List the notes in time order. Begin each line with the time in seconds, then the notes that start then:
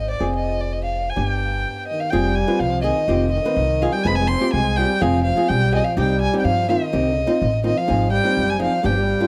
Already playing: G#1 C4 D#4 G#4
0.11 D5
0.20 F1 C4 F4 G#4
0.36 D#5
0.61 D5
0.73 D#5
0.85 F5
1.10 G#5
1.16 G1 B3 D4 G4 G#5
1.28 G5
1.88 D#3 D#5
2.00 F5
2.11 F1 G3 C4 F4 G#4 G5
2.35 G#5
2.47 C4 F4 B4
2.59 C2 F3 F5
2.81 D#3 C4 F4 G#4 D#5
3.08 F1 C4 F4 G4
3.31 D#3 D#5
3.42 D3 C4 F4 B4
3.47 D#3
3.56 C2
3.82 C4 F4 G#4 F5
3.92 G3 G5
4.04 F1 G#3 C4 F4 B4 G#5 B5
4.15 G#3 G#5
4.28 C4 C6
4.40 C4 F4 G4
4.53 C2 G#3 G#5
4.77 G3 C4 F4 G#4 G5
5.01 F1 F3 C4 F4 G#4 F5
5.24 F3 F5
5.36 C4 F4 G#4
5.47 B1 G3 G5
5.72 C4 F4 G#4 D#5
5.84 F3 F5
5.97 C2 G3 C4 D#4 G4 G5
6.21 G#5
6.33 C4 D#4 G4
6.40 G5
6.45 G2 F3 F5
6.68 D#3 C4 D#4 F4 D#5
6.93 C2 C4 D#4 G4
7.27 C4 D#4 F4
7.42 A1
7.64 D#3 C4 D#4 F4 D#5
7.77 F3 F5
7.88 G#1 C4 D#4 G#4
8.10 G3 G5
8.24 C4 D#4 F4
8.37 F#1
8.50 G#5
8.59 F3 C4 D#4 G#4 F5
8.83 G1 G3 B3 D4 G4 G5
8.89 F3
8.97 G3
9.20 B3 D4 F4